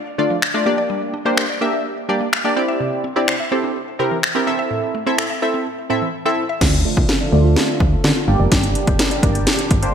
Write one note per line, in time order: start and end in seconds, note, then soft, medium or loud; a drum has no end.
0.18 0.29 D3 medium
0.18 0.37 A3 medium
0.18 0.37 D4 medium
0.18 0.37 F4 medium
0.18 0.37 D5 medium
0.30 0.41 F3 medium
0.42 finger snap loud
0.54 0.66 A3 medium
0.54 0.65 D4 medium
0.54 0.66 F4 medium
0.54 0.65 D5 loud
0.66 1.14 A#3 medium
0.66 1.14 D4 medium
0.66 1.14 G4 medium
0.66 1.14 D5 loud
0.78 0.88 D5 loud
0.90 1.00 G3 medium
1.14 1.24 D4 medium
1.25 1.44 A#3 medium
1.25 1.44 D4 medium
1.25 1.36 G4 medium
1.25 1.44 G4 medium
1.25 1.44 C5 loud
1.37 1.48 A#4 medium
1.37 finger snap loud
1.49 1.60 D5 medium
1.61 1.86 A#3 medium
1.61 1.86 D4 medium
1.61 1.86 G4 medium
1.61 1.72 A#4 loud
1.61 1.86 E5 loud
1.73 1.84 G4 medium
2.09 2.19 G3 medium
2.09 2.27 A#3 medium
2.09 2.27 D4 medium
2.09 2.27 G4 medium
2.09 2.27 D5 loud
2.21 2.31 A#3 medium
2.33 finger snap loud
2.44 2.56 A#3 medium
2.44 2.56 D4 medium
2.44 2.55 G4 medium
2.44 2.56 D5 loud
2.56 3.04 C4 medium
2.56 3.04 E4 medium
2.56 3.04 G4 medium
2.56 3.04 D5 loud
2.68 2.79 E5 loud
2.80 2.91 C3 medium
3.04 3.15 C4 medium
3.16 3.34 C4 medium
3.16 3.26 D4 medium
3.16 3.34 E4 medium
3.16 3.35 G4 medium
3.16 3.35 D5 medium
3.28 3.38 C5 medium
3.28 finger snap loud
3.40 3.50 E5 medium
3.52 3.76 C4 medium
3.52 3.76 E4 medium
3.52 3.76 G4 medium
3.52 3.76 A4 medium
3.52 3.62 C5 medium
3.64 3.74 D4 medium
3.99 4.10 C3 medium
3.99 4.18 C4 medium
3.99 4.18 E4 medium
3.99 4.18 G4 medium
3.99 4.18 A#4 medium
4.11 4.22 E3 medium
4.23 finger snap loud
4.35 4.46 C4 medium
4.35 4.46 D4 medium
4.35 4.46 E4 medium
4.35 4.47 G4 medium
4.35 4.47 A#4 loud
4.47 4.95 C4 medium
4.47 4.95 E4 medium
4.47 4.95 A4 medium
4.47 4.95 E5 loud
4.59 4.69 E5 loud
4.71 4.81 A2 medium
4.95 5.05 A3 medium
5.06 5.25 C4 medium
5.06 5.17 C4 medium
5.06 5.25 E4 medium
5.06 5.25 A4 medium
5.06 5.25 E5 loud
5.18 5.29 A4 medium
5.18 finger snap loud
5.30 5.41 E5 medium
5.42 5.67 C4 medium
5.42 5.67 E4 medium
5.42 5.53 A4 medium
5.42 5.67 A4 medium
5.42 5.67 E5 loud
5.54 5.65 C4 medium
5.90 6.00 A2 medium
5.90 6.08 C4 medium
5.90 6.08 E4 medium
5.90 6.08 A4 medium
5.90 6.08 E5 medium
6.02 6.12 E3 medium
6.25 6.44 C4 medium
6.25 6.36 C4 medium
6.25 6.44 E4 medium
6.25 6.44 A4 medium
6.25 6.44 E5 loud
6.49 6.60 E5 loud
6.61 6.85 D2 loud
6.61 6.72 F3 medium
6.61 6.73 A3 medium
6.61 6.74 D4 medium
6.61 6.74 F4 medium
6.61 6.74 D5 medium
6.61 kick loud
6.61 snare medium
6.61 crash medium
6.85 7.09 A3 medium
6.85 7.10 D4 medium
6.85 6.95 D4 medium
6.85 7.10 F4 medium
6.85 7.10 D5 medium
6.97 7.05 C2 medium
6.97 7.07 F4 loud
6.97 kick medium
7.09 7.19 A4 medium
7.09 snare medium
7.21 7.31 D5 medium
7.32 7.56 D2 loud
7.32 7.82 A3 medium
7.32 7.82 D4 medium
7.32 7.82 F4 medium
7.32 7.43 A4 medium
7.32 7.82 D5 medium
7.45 7.55 F4 medium
7.57 snare medium
7.80 7.96 D2 medium
7.80 7.91 F3 medium
7.80 kick medium
7.92 8.03 A3 medium
8.04 8.12 D3 medium
8.04 snare medium
8.16 8.26 F4 medium
8.28 8.36 G1 medium
8.28 9.94 A#2 medium
8.28 9.94 G3 medium
8.28 9.04 A#3 medium
8.28 9.04 D4 medium
8.28 9.94 D4 medium
8.28 9.94 G4 medium
8.28 9.04 G4 medium
8.28 9.04 D5 medium
8.40 8.48 F1 medium
8.40 8.50 D5 loud
8.52 8.75 G1 loud
8.52 8.62 G3 medium
8.52 kick loud
8.52 snare medium
8.52 closed hi-hat medium
8.64 closed hi-hat medium
8.75 8.86 D4 medium
8.75 closed hi-hat medium
8.87 8.95 F1 medium
8.87 8.98 G4 loud
8.87 kick medium
8.87 closed hi-hat soft
8.99 9.10 A#4 medium
8.99 snare medium
8.99 closed hi-hat medium
9.11 9.22 D5 medium
9.11 closed hi-hat soft
9.23 9.47 G1 loud
9.23 9.54 A#3 medium
9.23 9.54 D4 medium
9.23 9.54 G4 medium
9.23 9.34 A#4 medium
9.23 9.54 D5 loud
9.23 kick medium
9.23 closed hi-hat medium
9.35 9.45 G4 medium
9.35 closed hi-hat soft
9.47 snare medium
9.47 closed hi-hat medium
9.59 closed hi-hat medium
9.71 9.87 G1 loud
9.71 9.81 G3 medium
9.71 kick medium
9.71 closed hi-hat medium
9.82 9.94 A#3 medium
9.82 9.93 A#3 medium
9.82 9.94 D4 medium
9.82 9.94 G4 medium
9.82 9.94 C5 loud
9.82 closed hi-hat medium